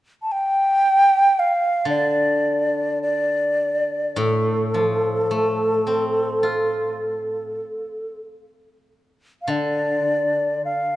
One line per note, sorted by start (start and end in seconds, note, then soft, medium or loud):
0.22 0.33 A5 soft
0.32 1.41 G5 medium
1.39 1.89 F5 medium
1.85 5.26 D3 soft
1.90 2.99 D5 medium
3.03 4.19 D5 medium
4.16 7.56 A2 medium
4.16 8.20 A4 medium
4.74 6.99 F3 soft
5.31 7.57 A3 soft
5.87 8.14 C4 soft
6.43 8.72 F4 soft
9.42 9.52 F5 soft
9.48 10.96 D3 soft
9.48 10.65 D5 medium
10.65 10.96 F5 medium